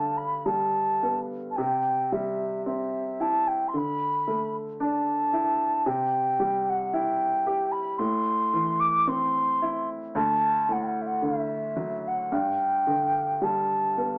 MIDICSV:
0, 0, Header, 1, 3, 480
1, 0, Start_track
1, 0, Key_signature, 1, "major"
1, 0, Tempo, 1115242
1, 1151, Tempo, 1067616
1, 1633, Time_signature, 4, 2, 24, 8
1, 4991, Tempo, 1100917
1, 6284, End_track
2, 0, Start_track
2, 0, Title_t, "Flute"
2, 0, Program_c, 0, 73
2, 0, Note_on_c, 0, 81, 70
2, 73, Note_on_c, 0, 83, 62
2, 80, Note_off_c, 0, 81, 0
2, 196, Note_on_c, 0, 81, 68
2, 203, Note_off_c, 0, 83, 0
2, 512, Note_off_c, 0, 81, 0
2, 647, Note_on_c, 0, 81, 50
2, 671, Note_on_c, 0, 79, 74
2, 678, Note_off_c, 0, 81, 0
2, 915, Note_on_c, 0, 76, 70
2, 921, Note_off_c, 0, 79, 0
2, 1141, Note_off_c, 0, 76, 0
2, 1144, Note_on_c, 0, 76, 71
2, 1391, Note_on_c, 0, 81, 85
2, 1397, Note_off_c, 0, 76, 0
2, 1509, Note_on_c, 0, 79, 72
2, 1516, Note_off_c, 0, 81, 0
2, 1603, Note_on_c, 0, 84, 60
2, 1610, Note_off_c, 0, 79, 0
2, 1644, Note_on_c, 0, 83, 87
2, 1651, Note_off_c, 0, 84, 0
2, 2000, Note_off_c, 0, 83, 0
2, 2111, Note_on_c, 0, 81, 78
2, 2587, Note_on_c, 0, 79, 91
2, 2594, Note_off_c, 0, 81, 0
2, 2957, Note_on_c, 0, 78, 76
2, 2964, Note_off_c, 0, 79, 0
2, 3069, Note_on_c, 0, 79, 80
2, 3076, Note_off_c, 0, 78, 0
2, 3418, Note_on_c, 0, 83, 86
2, 3424, Note_off_c, 0, 79, 0
2, 3537, Note_on_c, 0, 84, 92
2, 3543, Note_off_c, 0, 83, 0
2, 3904, Note_on_c, 0, 86, 86
2, 3911, Note_off_c, 0, 84, 0
2, 4032, Note_on_c, 0, 84, 89
2, 4039, Note_off_c, 0, 86, 0
2, 4397, Note_off_c, 0, 84, 0
2, 4516, Note_on_c, 0, 81, 89
2, 4768, Note_on_c, 0, 78, 77
2, 4775, Note_off_c, 0, 81, 0
2, 4819, Note_on_c, 0, 79, 50
2, 4826, Note_off_c, 0, 78, 0
2, 4832, Note_on_c, 0, 78, 73
2, 4839, Note_off_c, 0, 79, 0
2, 4901, Note_on_c, 0, 76, 51
2, 4907, Note_off_c, 0, 78, 0
2, 4924, Note_on_c, 0, 78, 75
2, 4931, Note_off_c, 0, 76, 0
2, 5004, Note_on_c, 0, 76, 78
2, 5011, Note_off_c, 0, 78, 0
2, 5366, Note_on_c, 0, 78, 74
2, 5372, Note_off_c, 0, 76, 0
2, 5480, Note_on_c, 0, 79, 86
2, 5487, Note_off_c, 0, 78, 0
2, 5958, Note_on_c, 0, 81, 72
2, 5964, Note_off_c, 0, 79, 0
2, 6284, Note_off_c, 0, 81, 0
2, 6284, End_track
3, 0, Start_track
3, 0, Title_t, "Upright piano"
3, 0, Program_c, 1, 0
3, 0, Control_c, 1, 64, 127
3, 0, Note_on_c, 1, 43, 49
3, 0, Note_on_c, 1, 50, 43
3, 197, Note_on_c, 1, 55, 44
3, 443, Note_on_c, 1, 59, 41
3, 661, Note_off_c, 1, 50, 0
3, 662, Note_off_c, 1, 43, 0
3, 666, Note_off_c, 1, 55, 0
3, 674, Note_off_c, 1, 59, 0
3, 680, Note_on_c, 1, 48, 52
3, 686, Control_c, 1, 64, 0
3, 775, Control_c, 1, 64, 127
3, 913, Note_on_c, 1, 55, 45
3, 1146, Note_on_c, 1, 60, 46
3, 1388, Note_on_c, 1, 64, 47
3, 1614, Note_off_c, 1, 55, 0
3, 1615, Note_off_c, 1, 48, 0
3, 1617, Note_off_c, 1, 60, 0
3, 1624, Note_off_c, 1, 64, 0
3, 1629, Note_on_c, 1, 50, 48
3, 1639, Control_c, 1, 64, 0
3, 1724, Control_c, 1, 64, 127
3, 1870, Note_on_c, 1, 57, 43
3, 2107, Note_on_c, 1, 62, 50
3, 2346, Note_on_c, 1, 64, 46
3, 2567, Note_off_c, 1, 50, 0
3, 2568, Note_off_c, 1, 57, 0
3, 2572, Note_off_c, 1, 62, 0
3, 2580, Note_off_c, 1, 64, 0
3, 2584, Note_on_c, 1, 48, 54
3, 2593, Control_c, 1, 64, 0
3, 2663, Control_c, 1, 64, 127
3, 2824, Note_on_c, 1, 55, 43
3, 3066, Note_on_c, 1, 64, 50
3, 3306, Note_on_c, 1, 67, 50
3, 3521, Note_off_c, 1, 48, 0
3, 3521, Note_off_c, 1, 55, 0
3, 3527, Note_off_c, 1, 64, 0
3, 3535, Note_off_c, 1, 67, 0
3, 3542, Note_on_c, 1, 45, 57
3, 3547, Control_c, 1, 64, 0
3, 3634, Control_c, 1, 64, 127
3, 3786, Note_on_c, 1, 52, 45
3, 4028, Note_on_c, 1, 60, 49
3, 4273, Note_on_c, 1, 64, 48
3, 4492, Note_off_c, 1, 45, 0
3, 4494, Note_off_c, 1, 52, 0
3, 4497, Note_off_c, 1, 60, 0
3, 4505, Note_off_c, 1, 64, 0
3, 4512, Note_on_c, 1, 38, 60
3, 4516, Control_c, 1, 64, 0
3, 4588, Control_c, 1, 64, 127
3, 4753, Note_on_c, 1, 45, 46
3, 4994, Note_on_c, 1, 50, 49
3, 5230, Note_on_c, 1, 54, 49
3, 5454, Note_off_c, 1, 38, 0
3, 5454, Note_off_c, 1, 45, 0
3, 5457, Note_off_c, 1, 50, 0
3, 5463, Note_off_c, 1, 54, 0
3, 5473, Note_on_c, 1, 43, 55
3, 5476, Control_c, 1, 64, 0
3, 5547, Control_c, 1, 64, 127
3, 5713, Note_on_c, 1, 50, 45
3, 5950, Note_on_c, 1, 55, 44
3, 6194, Note_on_c, 1, 59, 42
3, 6284, Note_off_c, 1, 43, 0
3, 6284, Note_off_c, 1, 50, 0
3, 6284, Note_off_c, 1, 55, 0
3, 6284, Note_off_c, 1, 59, 0
3, 6284, End_track
0, 0, End_of_file